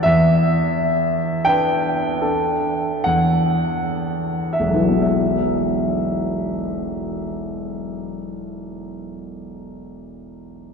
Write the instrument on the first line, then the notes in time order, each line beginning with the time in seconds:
grand piano
0.03 E2 E5
1.45 D4 B4 G5
2.21 D4 A4
3.04 E2 F#5
4.53 E5
4.60 E1
4.67 B1
4.74 E3
4.81 F#3
4.89 B3
4.95 E4
5.02 E5